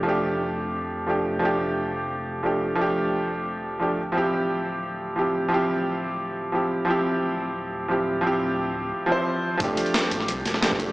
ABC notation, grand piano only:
X:1
M:4/4
L:1/8
Q:1/4=176
K:F
V:1 name="Grand piano"
[F,A,DG]6 [F,A,DG] z | [F,A,DG]6 [F,A,DG] z | [F,A,DG]6 [F,A,DG] z | [F,CEG]6 [F,CEG] z |
[F,CEG]6 [F,CEG] z | [F,CEG]6 [F,CEG] z | [F,CEG]4- [F,CEG] [F,CEc]3 | [F,A,DG]6 [F,A,DG] z |]